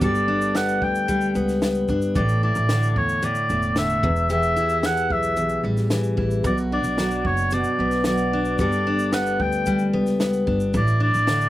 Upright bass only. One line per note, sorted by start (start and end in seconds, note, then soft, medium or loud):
0.01 0.78 G1 loud
0.82 1.31 D2 medium
1.35 1.85 C#2 medium
1.89 2.13 G1 medium
2.16 2.53 A1 loud
2.56 2.93 A1 loud
2.96 3.33 E2 medium
3.50 3.99 E1 loud
4.03 4.53 E1 loud
5.10 5.60 B1 medium
5.64 6.14 A1 medium
6.18 6.43 A1 medium
6.44 6.81 B1 loud
6.84 7.22 B1 medium
7.25 7.62 F#1 medium
7.79 8.55 B1 medium
8.59 9.36 G1 loud
9.40 9.89 D2 loud
9.94 10.43 C#2 medium
10.47 10.72 G1 medium
10.74 11.11 A1 loud
11.15 11.49 A1 medium